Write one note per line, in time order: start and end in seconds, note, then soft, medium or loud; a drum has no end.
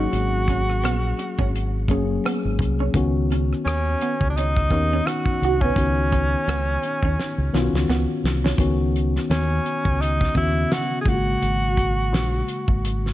0.00 1.03 F#3 medium
0.00 1.04 A#3 medium
0.00 1.04 C#4 medium
0.00 1.84 F#4 loud
0.00 1.04 G#4 medium
0.13 0.84 G#1 medium
0.13 closed hi-hat medium
0.48 0.61 C#4 medium
0.48 kick medium
0.48 closed hi-hat medium
0.70 cross-stick soft
0.83 1.12 A#1 medium
0.83 0.95 B3 medium
0.83 cross-stick loud
0.83 closed hi-hat medium
1.19 muted clean electric guitar stroke soft
1.19 closed hi-hat medium
1.39 1.89 G#1 medium
1.39 1.48 C#4 medium
1.39 kick medium
1.56 closed hi-hat medium
1.88 2.17 F#1 medium
1.88 2.84 F#3 medium
1.88 2.84 A#3 medium
1.88 2.84 C#4 medium
1.88 2.02 C#4 medium
1.88 2.85 G#4 medium
1.88 kick medium
1.88 closed hi-hat medium
2.25 2.37 B3 medium
2.25 cross-stick loud
2.25 closed hi-hat medium
2.45 2.57 G#1 medium
2.59 2.88 C2 medium
2.59 muted clean electric guitar stroke soft
2.59 kick medium
2.59 closed hi-hat medium
2.80 2.89 C#4 medium
2.94 3.52 C#2 loud
2.94 4.21 D#3 medium
2.94 4.22 B3 medium
2.94 4.22 C#4 medium
2.94 4.22 F#4 medium
2.94 kick loud
2.94 closed hi-hat medium
3.32 3.43 C#4 medium
3.32 closed hi-hat medium
3.53 cross-stick soft
3.65 3.94 D#2 medium
3.65 4.25 C#4 medium
3.65 cross-stick loud
3.65 closed hi-hat medium
4.01 4.14 B3 medium
4.01 closed hi-hat medium
4.21 4.71 C#2 medium
4.21 kick medium
4.29 4.38 D4 medium
4.37 4.49 C#4 medium
4.37 5.08 D#4 medium
4.37 closed hi-hat medium
4.57 kick medium
4.57 cross-stick soft
4.70 5.00 D#2 medium
4.70 5.65 D#3 medium
4.70 5.66 B3 medium
4.70 5.66 C#4 medium
4.70 5.66 D#4 medium
4.70 kick medium
4.70 closed hi-hat medium
4.74 muted clean electric guitar stroke soft
4.93 5.01 C#4 medium
5.07 5.63 F#4 loud
5.07 muted clean electric guitar stroke soft
5.07 cross-stick medium
5.07 closed hi-hat medium
5.26 kick medium
5.42 5.71 C2 medium
5.42 5.56 F#4 medium
5.42 closed hi-hat medium
5.61 5.72 B3 medium
5.61 7.88 C#4 medium
5.61 kick medium
5.76 6.34 C#2 medium
5.76 7.03 D#3 medium
5.76 7.03 B3 medium
5.76 7.04 C#4 medium
5.76 7.04 F#4 medium
5.76 kick loud
5.76 closed hi-hat medium
6.12 6.24 C#4 medium
6.12 kick medium
6.12 closed hi-hat medium
6.47 6.76 C#2 medium
6.47 6.60 B3 medium
6.47 cross-stick medium
6.47 closed hi-hat medium
6.83 muted clean electric guitar stroke soft
6.83 closed hi-hat medium
7.03 7.15 D#2 medium
7.03 7.13 C#4 medium
7.03 kick medium
7.20 snare soft
7.38 7.50 C#2 medium
7.53 7.70 B1 medium
7.53 8.48 D#3 medium
7.53 8.48 B3 medium
7.53 8.49 C#4 medium
7.53 7.67 C#4 medium
7.53 7.62 F4 medium
7.53 snare medium
7.62 8.53 F#4 medium
7.73 7.85 C#2 medium
7.73 snare medium
7.89 8.05 C#2 medium
7.89 8.01 B3 medium
7.89 snare medium
8.24 8.53 C2 medium
8.24 muted clean electric guitar stroke soft
8.24 snare medium
8.44 8.53 C#4 medium
8.44 snare medium
8.58 9.17 C#2 medium
8.58 9.85 D#3 medium
8.58 9.86 B3 medium
8.58 9.86 C#4 medium
8.58 9.86 F#4 medium
8.58 kick loud
8.58 closed hi-hat medium
8.96 closed hi-hat medium
9.16 snare soft
9.30 9.58 D#2 medium
9.30 10.03 C#4 medium
9.30 snare loud
9.30 closed hi-hat medium
9.66 closed hi-hat medium
9.85 10.26 C#2 medium
9.85 kick medium
10.02 10.36 D#4 medium
10.02 closed hi-hat medium
10.21 kick medium
10.21 snare soft
10.35 10.64 D#2 medium
10.35 11.04 C#3 medium
10.35 11.06 B3 medium
10.35 11.06 C#4 medium
10.35 10.74 E4 medium
10.35 11.07 F#4 medium
10.35 kick medium
10.35 closed hi-hat medium
10.72 11.01 F#4 medium
10.72 snare medium
10.72 closed hi-hat medium
11.01 11.10 G#4 medium
11.05 11.35 G#1 medium
11.05 12.32 C#3 medium
11.05 12.33 G#3 medium
11.05 12.33 A#3 medium
11.05 11.14 F4 medium
11.05 13.13 F#4 loud
11.05 kick medium
11.05 closed hi-hat medium
11.14 12.37 F#4 medium
11.42 12.12 G#1 medium
11.42 closed hi-hat medium
11.77 kick medium
11.77 closed hi-hat medium
12.12 12.41 A#1 medium
12.12 snare loud
12.12 closed hi-hat medium
12.48 closed hi-hat medium
12.68 13.13 G#1 medium
12.68 kick medium
12.85 closed hi-hat medium
13.06 snare soft